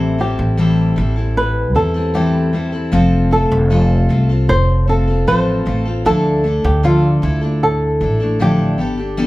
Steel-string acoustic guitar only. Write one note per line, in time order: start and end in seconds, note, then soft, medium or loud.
0.00 0.19 A2 medium
0.00 0.19 E3 medium
0.00 0.17 G3 medium
0.00 0.19 C4 medium
0.00 0.20 E4 medium
0.00 0.20 A4 medium
0.19 0.57 G3 medium
0.19 0.58 C4 medium
0.19 0.58 E4 medium
0.19 0.59 A4 medium
0.57 0.97 A2 medium
0.57 0.97 E3 medium
0.57 0.95 G3 medium
0.57 0.96 C4 medium
0.57 0.97 E4 medium
0.57 0.98 A4 medium
0.96 1.16 G3 medium
0.96 1.17 C4 medium
0.96 1.16 E4 medium
0.96 1.15 A4 medium
1.16 1.73 G3 soft
1.16 1.75 C4 soft
1.16 1.76 E4 soft
1.16 1.75 A4 soft
1.75 1.95 G3 medium
1.75 1.95 C4 medium
1.75 1.94 E4 medium
1.75 1.93 A4 medium
1.94 2.14 G3 soft
1.94 2.14 C4 soft
1.94 2.15 E4 soft
1.94 2.14 A4 medium
2.14 2.53 A2 medium
2.14 2.54 E3 medium
2.14 2.52 G3 medium
2.14 2.53 C4 medium
2.14 2.54 E4 medium
2.14 2.55 A4 medium
2.53 2.73 G3 medium
2.53 2.74 C4 medium
2.53 2.72 E4 medium
2.53 2.71 A4 medium
2.72 2.92 G3 soft
2.72 2.92 C4 soft
2.72 2.93 E4 soft
2.72 2.92 A4 soft
2.92 3.31 F3 medium
2.92 3.30 A3 medium
2.92 3.31 C4 medium
2.92 3.32 F4 medium
2.92 3.33 A4 medium
3.31 3.70 A3 medium
3.31 3.70 C4 medium
3.31 3.71 F4 medium
3.31 3.71 A4 medium
3.70 4.10 F3 medium
3.70 4.08 A3 medium
3.70 4.09 C4 medium
3.70 4.10 F4 medium
3.70 4.11 A4 medium
4.09 4.29 A3 medium
4.09 4.30 C4 medium
4.09 4.30 F4 medium
4.09 4.28 A4 medium
4.29 4.88 C4 soft
4.29 4.89 F4 soft
4.29 4.88 A4 medium
4.87 5.07 A3 medium
4.87 5.08 C4 medium
4.87 5.08 F4 medium
4.87 5.06 A4 medium
5.08 5.27 C4 soft
5.08 5.28 F4 soft
5.08 5.27 A4 medium
5.27 5.66 F3 medium
5.27 5.64 A3 medium
5.27 5.66 C4 medium
5.27 5.67 F4 medium
5.27 5.68 A4 medium
5.66 5.86 A3 medium
5.66 5.86 C4 medium
5.66 5.86 F4 medium
5.66 5.84 A4 medium
5.85 6.06 C4 soft
5.85 6.06 F4 soft
5.85 6.05 A4 medium
6.05 6.44 D3 medium
6.05 6.45 F3 medium
6.05 6.43 A3 medium
6.05 6.44 D4 medium
6.05 6.45 E4 medium
6.05 6.46 A4 medium
6.44 6.83 A3 medium
6.44 6.83 D4 medium
6.44 6.85 E4 medium
6.44 6.84 A4 medium
6.83 7.23 D3 medium
6.83 7.23 F3 medium
6.83 7.21 A3 medium
6.83 7.22 D4 medium
6.83 7.24 A4 medium
7.22 7.42 A3 medium
7.22 7.43 D4 medium
7.22 7.42 E4 medium
7.22 7.40 A4 medium
7.41 7.99 A3 soft
7.41 8.01 D4 soft
7.41 8.01 E4 medium
7.41 8.01 A4 soft
8.01 8.20 A3 medium
8.01 8.21 D4 medium
8.01 8.20 E4 medium
8.01 8.19 A4 medium
8.20 8.39 A3 soft
8.20 8.40 D4 medium
8.20 8.40 E4 soft
8.20 8.40 A4 soft
8.39 8.79 D3 medium
8.39 8.79 F3 medium
8.39 8.78 A3 medium
8.39 8.78 D4 medium
8.39 8.80 E4 medium
8.39 8.80 A4 medium
8.78 8.98 B3 medium
8.78 8.99 D4 medium
8.78 8.98 G4 medium
8.78 8.96 A4 medium
8.97 9.17 D4 soft
8.97 9.18 G4 soft
8.97 9.18 A4 soft
9.17 9.27 G3 medium
9.17 9.27 B3 medium
9.17 9.27 D4 medium
9.17 9.27 G4 medium
9.17 9.27 A4 medium